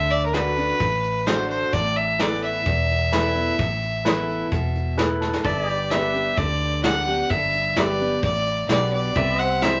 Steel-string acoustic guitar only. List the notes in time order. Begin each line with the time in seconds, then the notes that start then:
Already playing: D3
0.33 D3 A3 D4 F#4
0.57 D4 F#4
0.80 A2
1.26 D3 A3 D4 F#4
1.73 A2
2.19 E3 A3 B3 E4
2.66 E2
3.13 E3 A3 B3 E4
3.35 B3 E4
3.60 A2
4.05 E3 A3 B3 E4
4.52 B2
4.98 A2
5.44 G2
5.91 D3 G3 B3 G4
6.14 B3 G4
6.38 D3
6.84 D3 G3 B3 G4
7.07 B3 G4
7.31 G2
7.76 D3 G3 B3 G4
8.00 B3 G4
8.23 A2
8.69 B2
9.16 C3
9.62 E3 G3 C4 E4